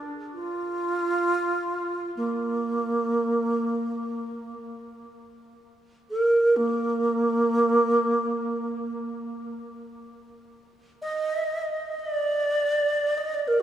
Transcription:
0.34 2.11 F4 medium
2.17 4.54 A#3 medium
6.10 6.58 A#4 medium
6.57 9.51 A#3 medium
11.02 11.99 D#5 medium
11.99 12.10 D#5 medium
12.10 13.19 D5 medium
13.18 13.36 D#5 medium
13.34 13.49 D5 medium
13.48 13.62 A#4 medium

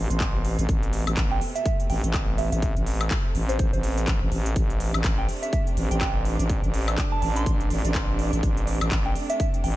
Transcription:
0.00 4.55 B2 medium
0.00 9.76 C3 medium
0.00 9.76 A3 medium
0.00 0.29 C6 loud
0.00 downlifter medium
0.10 0.57 A1 loud
0.10 closed hi-hat medium
0.20 kick loud
0.20 clap loud
0.20 closed hi-hat medium
0.45 open hi-hat loud
0.59 0.67 A1 loud
0.59 closed hi-hat medium
0.69 1.05 A1 loud
0.69 kick loud
0.69 closed hi-hat medium
0.83 closed hi-hat soft
0.93 open hi-hat loud
1.07 1.16 A1 loud
1.07 closed hi-hat medium
1.07 high woodblock medium
1.17 1.40 A1 loud
1.17 kick loud
1.17 clap loud
1.17 closed hi-hat medium
1.31 1.41 G5 medium
1.41 open hi-hat loud
1.55 1.62 E5 medium
1.55 closed hi-hat soft
1.66 1.75 E5 medium
1.66 kick loud
1.66 closed hi-hat medium
1.80 closed hi-hat soft
1.90 2.02 A1 loud
1.90 2.03 G5 medium
1.90 open hi-hat loud
2.04 2.50 A1 loud
2.04 closed hi-hat medium
2.14 kick loud
2.14 clap loud
2.14 closed hi-hat medium
2.14 high woodblock medium
2.38 2.47 E5 medium
2.38 open hi-hat loud
2.52 2.74 A1 loud
2.52 2.59 E5 medium
2.52 closed hi-hat medium
2.62 kick loud
2.62 closed hi-hat medium
2.76 3.09 A1 medium
2.76 closed hi-hat soft
2.87 open hi-hat loud
3.01 closed hi-hat soft
3.01 high woodblock medium
3.11 kick loud
3.11 clap loud
3.11 closed hi-hat medium
3.35 3.58 A1 loud
3.35 open hi-hat medium
3.49 3.55 C5 medium
3.49 closed hi-hat medium
3.59 3.71 A1 medium
3.59 kick loud
3.59 closed hi-hat medium
3.73 4.06 A1 loud
3.73 4.08 C5 medium
3.73 closed hi-hat soft
3.83 open hi-hat loud
3.98 closed hi-hat medium
4.08 4.19 A1 loud
4.08 kick loud
4.08 clap loud
4.08 closed hi-hat medium
4.22 4.30 A1 loud
4.32 4.54 A1 medium
4.32 open hi-hat loud
4.46 closed hi-hat medium
4.56 4.92 A1 medium
4.56 9.76 D4 medium
4.56 kick loud
4.56 closed hi-hat medium
4.70 closed hi-hat soft
4.80 open hi-hat loud
4.94 5.03 A1 loud
4.94 closed hi-hat soft
4.94 high woodblock medium
5.04 5.27 A1 loud
5.04 kick loud
5.04 clap loud
5.04 closed hi-hat medium
5.18 5.28 G5 medium
5.29 open hi-hat medium
5.43 5.49 E5 medium
5.43 closed hi-hat soft
5.53 5.62 E5 medium
5.53 kick loud
5.53 closed hi-hat medium
5.67 closed hi-hat soft
5.77 5.89 A1 loud
5.77 open hi-hat loud
5.91 6.37 A1 loud
5.91 5.98 G5 medium
5.91 closed hi-hat medium
6.01 6.10 G5 medium
6.01 kick loud
6.01 clap loud
6.01 closed hi-hat medium
6.01 high woodblock medium
6.25 open hi-hat medium
6.39 6.61 A1 loud
6.39 closed hi-hat medium
6.50 kick loud
6.50 closed hi-hat medium
6.64 6.96 A1 loud
6.64 closed hi-hat soft
6.74 open hi-hat loud
6.88 closed hi-hat medium
6.88 high woodblock medium
6.98 kick loud
6.98 clap loud
6.98 closed hi-hat medium
7.12 7.18 A5 medium
7.22 7.45 A1 loud
7.22 7.31 A5 medium
7.22 open hi-hat medium
7.36 8.03 C6 medium
7.36 closed hi-hat medium
7.46 7.69 A1 medium
7.46 kick loud
7.46 closed hi-hat medium
7.60 closed hi-hat soft
7.70 7.82 A1 loud
7.70 open hi-hat loud
7.85 8.31 A1 loud
7.85 closed hi-hat medium
7.95 kick loud
7.95 clap loud
7.95 closed hi-hat medium
8.19 open hi-hat medium
8.33 8.41 A1 loud
8.33 closed hi-hat medium
8.43 8.79 A1 loud
8.43 kick loud
8.43 closed hi-hat medium
8.57 closed hi-hat soft
8.67 open hi-hat loud
8.81 8.90 A1 loud
8.81 closed hi-hat medium
8.81 high woodblock medium
8.91 9.14 A1 loud
8.91 kick loud
8.91 clap loud
8.91 closed hi-hat medium
9.06 9.15 G5 medium
9.16 open hi-hat medium
9.30 9.36 E5 medium
9.30 closed hi-hat medium
9.40 9.49 E5 medium
9.40 kick loud
9.40 closed hi-hat medium
9.54 closed hi-hat soft
9.64 9.76 A1 loud
9.64 9.76 G5 medium
9.64 open hi-hat medium

